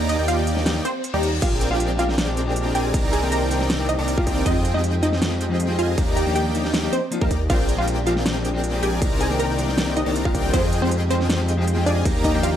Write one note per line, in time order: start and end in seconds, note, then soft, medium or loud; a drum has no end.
0.00 0.17 D#2 loud
0.00 0.17 A#3 loud
0.00 0.17 D#4 medium
0.00 0.17 G4 medium
0.00 0.17 D5 loud
0.00 0.17 A#5 loud
0.09 0.19 D#4 medium
0.09 0.19 D#5 medium
0.09 closed hi-hat medium
0.19 0.81 D#2 loud
0.19 0.83 A#3 medium
0.19 0.83 D#4 medium
0.19 0.83 G4 medium
0.19 0.83 D5 medium
0.19 0.83 G5 loud
0.28 0.43 F4 medium
0.28 0.43 F5 medium
0.28 closed hi-hat medium
0.47 closed hi-hat medium
0.57 snare soft
0.66 snare loud
0.66 closed hi-hat medium
0.66 reverse cymbal medium
0.85 1.00 C4 medium
0.85 1.00 C5 loud
0.85 closed hi-hat medium
1.04 closed hi-hat medium
1.14 1.40 D#2 medium
1.14 1.29 G3 medium
1.14 1.29 A#3 medium
1.14 1.29 D#4 medium
1.14 1.29 G4 medium
1.14 1.29 G4 loud
1.14 1.29 D5 medium
1.14 1.29 A#5 medium
1.23 closed hi-hat medium
1.41 1.69 A#1 loud
1.41 1.47 F3 medium
1.41 1.48 G#3 medium
1.41 1.48 C4 medium
1.41 1.69 C4 medium
1.41 1.48 D4 medium
1.41 1.57 F4 medium
1.41 1.48 G4 medium
1.41 1.68 G#4 medium
1.41 1.69 A#4 medium
1.41 1.68 D5 medium
1.41 1.57 F5 loud
1.41 1.69 G5 medium
1.41 kick loud
1.41 closed hi-hat medium
1.41 crash medium
1.41 crash soft
1.61 closed hi-hat medium
1.70 2.73 A#1 loud
1.70 1.96 F3 medium
1.70 1.97 G#3 medium
1.70 1.97 C4 medium
1.70 2.73 C4 medium
1.70 1.97 D4 medium
1.70 1.86 F4 medium
1.70 1.97 G4 loud
1.70 2.73 G#4 medium
1.70 2.73 A#4 medium
1.70 2.73 D5 medium
1.70 1.86 F5 loud
1.70 2.73 G5 medium
1.80 closed hi-hat medium
1.98 2.08 F3 medium
1.98 2.08 G#3 medium
1.98 2.08 C4 medium
1.98 2.09 D4 medium
1.98 2.19 F4 medium
1.98 2.09 G4 medium
1.98 2.19 F5 loud
1.98 closed hi-hat medium
2.09 snare soft
2.18 snare loud
2.18 closed hi-hat medium
2.27 2.44 F3 medium
2.27 2.44 G#3 medium
2.27 2.44 C4 medium
2.27 2.45 D4 medium
2.27 2.45 G4 medium
2.37 closed hi-hat medium
2.45 2.63 F3 loud
2.45 2.63 G#3 medium
2.45 2.63 C4 medium
2.45 2.64 D4 medium
2.45 2.64 G4 loud
2.56 closed hi-hat medium
2.65 2.91 F3 loud
2.65 2.91 G#3 medium
2.65 2.92 C4 medium
2.65 2.92 D4 medium
2.65 2.92 G4 loud
2.75 2.92 A#1 loud
2.75 2.92 C4 medium
2.75 2.95 G4 medium
2.75 2.92 G#4 medium
2.75 2.92 A#4 medium
2.75 2.92 D5 medium
2.75 2.95 G5 loud
2.75 2.92 G#5 medium
2.75 closed hi-hat medium
2.93 3.21 C2 loud
2.93 2.99 D#3 medium
2.93 2.99 A#3 medium
2.93 3.20 C4 loud
2.93 3.00 C4 medium
2.93 3.00 D4 medium
2.93 3.20 D#4 loud
2.93 3.00 G4 medium
2.93 3.20 A#4 loud
2.93 3.20 D5 loud
2.93 3.20 A#5 loud
2.93 kick loud
2.93 closed hi-hat medium
2.93 crash soft
3.13 3.23 G#4 medium
3.13 3.23 G#5 medium
3.13 closed hi-hat medium
3.22 3.97 C2 loud
3.22 3.48 D#3 medium
3.22 3.48 A#3 medium
3.22 3.87 C4 medium
3.22 3.49 C4 medium
3.22 3.49 D4 medium
3.22 3.87 D#4 medium
3.22 3.49 G4 loud
3.22 3.87 A#4 medium
3.22 3.87 D5 medium
3.22 3.87 G5 loud
3.32 3.47 A#4 medium
3.32 3.47 A#5 loud
3.32 closed hi-hat medium
3.50 3.60 D#3 medium
3.50 3.60 A#3 medium
3.50 3.60 C4 medium
3.50 3.60 D4 medium
3.50 3.61 G4 medium
3.50 closed hi-hat medium
3.61 snare soft
3.70 snare loud
3.70 closed hi-hat medium
3.78 3.96 D#3 medium
3.78 3.96 A#3 medium
3.78 3.96 C4 medium
3.78 3.96 D4 medium
3.78 3.97 G4 medium
3.89 4.04 D#4 medium
3.89 4.04 D#5 loud
3.89 closed hi-hat medium
3.98 4.25 C2 loud
3.98 4.15 D#3 loud
3.98 4.15 A#3 medium
3.98 4.15 C4 medium
3.98 4.25 C4 medium
3.98 4.15 D4 medium
3.98 4.25 D#4 medium
3.98 4.16 G4 loud
3.98 4.25 A#4 medium
3.98 4.25 D5 medium
3.98 4.25 A#5 medium
4.08 closed hi-hat medium
4.17 4.43 D#3 loud
4.17 4.43 A#3 medium
4.17 4.44 C4 medium
4.17 4.44 D4 medium
4.17 4.33 F4 medium
4.17 4.44 G4 loud
4.17 4.33 F5 loud
4.17 kick loud
4.27 4.44 C2 medium
4.27 4.44 C4 loud
4.27 4.44 D#4 medium
4.27 4.44 A#4 medium
4.27 4.44 D5 medium
4.27 4.44 G5 loud
4.27 kick medium
4.27 closed hi-hat medium
4.45 4.73 F2 loud
4.45 4.51 F3 medium
4.45 4.51 G#3 medium
4.45 4.72 C4 medium
4.45 4.52 C4 medium
4.45 4.61 D#4 medium
4.45 4.52 D#4 medium
4.45 4.72 F4 medium
4.45 4.52 G4 medium
4.45 4.72 G#4 medium
4.45 4.72 D#5 medium
4.45 4.61 D#5 loud
4.45 4.72 G5 medium
4.45 kick loud
4.45 closed hi-hat medium
4.45 crash soft
4.65 closed hi-hat medium
4.73 5.77 F2 loud
4.73 5.00 F3 medium
4.73 5.00 G#3 medium
4.73 5.77 C4 medium
4.73 5.01 C4 medium
4.73 4.90 D#4 medium
4.73 5.01 D#4 medium
4.73 5.77 F4 medium
4.73 5.01 G4 loud
4.73 5.77 G#4 medium
4.73 4.90 D#5 medium
4.73 5.77 D#5 medium
4.73 5.77 G5 medium
4.84 closed hi-hat medium
5.02 5.12 F3 medium
5.02 5.12 G#3 medium
5.02 5.12 C4 medium
5.02 5.23 D#4 medium
5.02 5.12 D#4 medium
5.02 5.13 G4 medium
5.02 5.23 D#5 medium
5.02 closed hi-hat medium
5.13 snare soft
5.22 snare loud
5.22 closed hi-hat medium
5.30 5.48 F3 medium
5.30 5.48 G#3 medium
5.30 5.48 C4 medium
5.30 5.48 D#4 medium
5.30 5.49 G4 medium
5.41 closed hi-hat medium
5.49 5.67 F3 loud
5.49 5.67 G#3 medium
5.49 5.67 C4 medium
5.49 5.67 D#4 medium
5.49 5.68 G4 loud
5.60 closed hi-hat medium
5.68 5.95 F3 loud
5.68 5.95 G#3 medium
5.68 5.96 C4 medium
5.68 5.96 D#4 medium
5.68 5.96 G4 loud
5.79 5.96 F2 loud
5.79 5.96 C4 medium
5.79 5.99 F4 medium
5.79 5.96 F4 medium
5.79 5.96 G#4 medium
5.79 5.96 D#5 medium
5.79 5.99 F5 loud
5.79 5.96 G#5 medium
5.79 closed hi-hat medium
5.97 6.25 D#2 loud
5.97 6.03 F3 medium
5.97 6.03 A#3 medium
5.97 6.24 A#3 loud
5.97 6.04 D4 medium
5.97 6.24 D#4 loud
5.97 6.04 D#4 medium
5.97 6.24 G4 loud
5.97 6.04 G4 medium
5.97 6.24 D5 loud
5.97 6.24 A#5 loud
5.97 kick loud
5.97 closed hi-hat medium
5.97 crash soft
6.17 6.27 G4 medium
6.17 6.27 G5 medium
6.17 closed hi-hat medium
6.25 6.89 D#2 loud
6.25 6.52 F3 medium
6.25 6.52 A#3 medium
6.25 6.91 A#3 medium
6.25 6.53 D4 medium
6.25 6.91 D#4 medium
6.25 6.53 D#4 medium
6.25 6.91 G4 medium
6.25 6.53 G4 loud
6.25 6.91 D5 medium
6.25 6.91 G5 medium
6.36 6.51 G4 medium
6.36 6.51 G5 medium
6.36 closed hi-hat medium
6.54 6.64 F3 medium
6.54 6.64 A#3 medium
6.54 6.64 D4 medium
6.54 6.64 D#4 medium
6.54 6.65 G4 medium
6.54 closed hi-hat medium
6.64 snare soft
6.74 snare loud
6.74 closed hi-hat medium
6.82 7.00 F3 medium
6.82 7.00 A#3 medium
6.82 7.00 D4 medium
6.82 7.00 D#4 medium
6.82 7.01 G4 medium
6.93 7.08 C4 medium
6.93 7.08 C5 loud
6.93 closed hi-hat medium
7.11 7.19 F3 loud
7.11 7.19 A#3 medium
7.11 7.19 D4 medium
7.11 7.19 D#4 medium
7.11 7.20 F4 loud
7.11 closed hi-hat medium
7.21 7.48 D#2 loud
7.21 7.30 F3 loud
7.21 7.30 A#3 medium
7.21 7.36 A#3 medium
7.21 7.30 D4 medium
7.21 7.36 D#4 medium
7.21 7.31 D#4 medium
7.21 7.36 G4 medium
7.21 7.31 G4 loud
7.21 7.36 A#4 loud
7.21 7.36 D5 medium
7.21 7.36 A#5 medium
7.21 kick loud
7.31 kick medium
7.31 closed hi-hat medium
7.49 7.76 A#1 loud
7.49 7.55 F3 medium
7.49 7.55 G#3 medium
7.49 7.56 C4 medium
7.49 7.76 C4 medium
7.49 7.56 D4 medium
7.49 7.65 F4 medium
7.49 7.56 G4 medium
7.49 7.76 G#4 medium
7.49 7.76 A#4 medium
7.49 7.76 D5 medium
7.49 7.65 F5 loud
7.49 7.76 G5 medium
7.49 kick loud
7.49 closed hi-hat medium
7.49 crash soft
7.69 closed hi-hat medium
7.77 8.81 A#1 loud
7.77 8.04 F3 medium
7.77 8.04 G#3 medium
7.77 8.80 C4 medium
7.77 8.04 C4 medium
7.77 8.05 D4 medium
7.77 7.93 F4 medium
7.77 8.05 G4 loud
7.77 8.80 G#4 medium
7.77 8.80 A#4 medium
7.77 8.80 D5 medium
7.77 7.93 F5 medium
7.77 8.80 G5 medium
7.88 closed hi-hat medium
8.06 8.16 F3 medium
8.06 8.16 G#3 medium
8.06 8.16 C4 medium
8.06 8.16 D4 medium
8.06 8.27 F4 medium
8.06 8.17 G4 medium
8.06 8.27 F5 medium
8.06 closed hi-hat medium
8.16 snare soft
8.26 snare loud
8.26 closed hi-hat medium
8.34 8.52 F3 medium
8.34 8.52 G#3 medium
8.34 8.52 C4 medium
8.34 8.52 D4 medium
8.34 8.53 G4 medium
8.45 closed hi-hat medium
8.53 8.71 F3 loud
8.53 8.71 G#3 medium
8.53 8.71 C4 medium
8.53 8.71 D4 medium
8.53 8.71 G4 loud
8.64 closed hi-hat medium
8.72 8.99 F3 loud
8.72 8.99 G#3 medium
8.72 8.99 C4 medium
8.72 9.00 D4 medium
8.72 9.00 G4 loud
8.83 9.00 A#1 loud
8.83 8.99 C4 medium
8.83 9.03 G4 medium
8.83 8.99 G#4 medium
8.83 8.99 A#4 medium
8.83 8.99 D5 medium
8.83 9.03 G5 medium
8.83 8.99 G#5 medium
8.83 closed hi-hat medium
9.00 9.28 C2 loud
9.00 9.07 D#3 medium
9.00 9.07 A#3 medium
9.00 9.07 C4 medium
9.00 9.28 C4 loud
9.00 9.08 D4 medium
9.00 9.28 D#4 loud
9.00 9.08 G4 medium
9.00 9.28 A#4 loud
9.00 9.28 D5 loud
9.00 9.28 A#5 loud
9.00 kick loud
9.00 closed hi-hat medium
9.00 crash soft
9.21 9.31 G#4 medium
9.21 9.31 G#5 medium
9.21 closed hi-hat medium
9.29 10.04 C2 loud
9.29 9.56 D#3 medium
9.29 9.56 A#3 medium
9.29 9.56 C4 medium
9.29 9.94 C4 medium
9.29 9.57 D4 medium
9.29 9.94 D#4 medium
9.29 9.57 G4 loud
9.29 9.94 A#4 medium
9.29 9.94 D5 medium
9.29 9.94 G5 medium
9.39 9.55 A#4 medium
9.39 9.55 A#5 loud
9.39 closed hi-hat medium
9.58 9.67 D#3 medium
9.58 9.68 A#3 medium
9.58 9.68 C4 medium
9.58 9.68 D4 medium
9.58 9.68 G4 medium
9.58 closed hi-hat medium
9.68 snare soft
9.78 snare loud
9.78 closed hi-hat medium
9.86 10.03 D#3 medium
9.86 10.04 A#3 medium
9.86 10.04 C4 medium
9.86 10.04 D4 medium
9.86 10.04 G4 medium
9.97 10.12 D#4 medium
9.97 10.12 D#5 medium
9.97 closed hi-hat medium
10.05 10.33 C2 loud
10.05 10.22 D#3 loud
10.05 10.23 A#3 medium
10.05 10.32 C4 medium
10.05 10.23 C4 medium
10.05 10.23 D4 medium
10.05 10.32 D#4 medium
10.05 10.23 G4 loud
10.05 10.32 A#4 medium
10.05 10.32 D5 medium
10.05 10.32 A#5 medium
10.16 closed hi-hat medium
10.24 10.51 D#3 loud
10.24 10.51 A#3 medium
10.24 10.51 C4 medium
10.24 10.52 D4 medium
10.24 10.40 F4 medium
10.24 10.52 G4 loud
10.24 10.40 F5 medium
10.24 kick loud
10.35 10.52 C2 loud
10.35 10.51 C4 medium
10.35 10.51 D#4 medium
10.35 10.51 A#4 medium
10.35 10.51 D5 medium
10.35 10.51 G5 loud
10.35 kick medium
10.35 closed hi-hat medium
10.53 10.80 F2 loud
10.53 10.59 F3 medium
10.53 10.59 G#3 medium
10.53 10.69 C4 medium
10.53 10.59 C4 medium
10.53 10.80 C4 medium
10.53 10.60 D#4 medium
10.53 10.80 F4 medium
10.53 10.60 G4 medium
10.53 10.80 G#4 medium
10.53 10.69 C5 loud
10.53 10.80 D#5 medium
10.53 10.80 G5 medium
10.53 kick loud
10.53 closed hi-hat medium
10.53 crash soft
10.73 closed hi-hat medium
10.81 11.85 F2 loud
10.81 11.08 F3 loud
10.81 11.08 G#3 medium
10.81 10.97 C4 medium
10.81 11.08 C4 medium
10.81 11.84 C4 medium
10.81 11.09 D#4 medium
10.81 11.84 F4 medium
10.81 11.09 G4 loud
10.81 11.84 G#4 medium
10.81 10.97 C5 medium
10.81 11.84 D#5 medium
10.81 11.84 G5 medium
10.91 closed hi-hat medium
11.10 11.19 F3 medium
11.10 11.20 G#3 medium
11.10 11.20 C4 medium
11.10 11.31 C4 medium
11.10 11.20 D#4 medium
11.10 11.20 G4 medium
11.10 11.31 C5 loud
11.10 closed hi-hat medium
11.20 snare soft
11.30 snare loud
11.30 closed hi-hat medium
11.38 11.55 F3 medium
11.38 11.56 G#3 medium
11.38 11.56 C4 medium
11.38 11.56 D#4 medium
11.38 11.56 G4 medium
11.49 closed hi-hat medium
11.57 11.74 F3 loud
11.57 11.75 G#3 medium
11.57 11.75 C4 medium
11.57 11.75 D#4 medium
11.57 11.75 G4 loud
11.68 closed hi-hat medium
11.76 12.03 F3 loud
11.76 12.03 G#3 medium
11.76 12.03 C4 medium
11.76 12.03 D#4 medium
11.76 12.04 G4 loud
11.86 12.04 F2 loud
11.86 12.03 C4 medium
11.86 12.07 D4 medium
11.86 12.03 F4 medium
11.86 12.03 G#4 medium
11.86 12.07 D5 loud
11.86 12.03 D#5 medium
11.86 12.03 G#5 medium
11.86 closed hi-hat medium
12.04 12.32 D#2 loud
12.04 12.11 F3 medium
12.04 12.11 A#3 medium
12.04 12.32 A#3 loud
12.04 12.11 D4 medium
12.04 12.32 D#4 medium
12.04 12.11 D#4 medium
12.04 12.32 G4 medium
12.04 12.12 G4 medium
12.04 12.32 D5 medium
12.04 12.32 A#5 loud
12.04 kick loud
12.04 closed hi-hat medium
12.04 crash medium
12.24 12.35 D#4 medium
12.24 12.35 D#5 medium
12.24 kick medium
12.24 closed hi-hat medium
12.33 12.56 D#2 medium
12.33 12.56 F3 medium
12.33 12.56 A#3 medium
12.33 12.56 D4 medium
12.33 12.56 D#4 medium
12.33 12.56 G4 medium
12.33 12.56 G4 loud
12.33 12.56 D5 medium
12.33 12.56 G5 medium
12.43 12.56 F4 medium
12.43 12.56 F5 loud
12.43 closed hi-hat medium